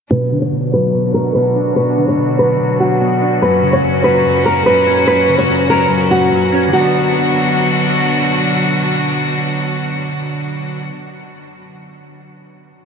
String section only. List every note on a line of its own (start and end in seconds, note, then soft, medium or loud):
0.11 3.39 B2 medium
0.11 6.69 F#3 medium
0.11 3.39 D4 medium
0.11 3.39 F#4 medium
3.42 6.70 A#2 medium
3.42 6.70 C#4 medium
3.42 6.70 F#4 medium
6.73 10.80 B2 medium
6.73 10.80 F#3 medium
6.73 10.80 D4 medium
6.73 10.80 F#4 medium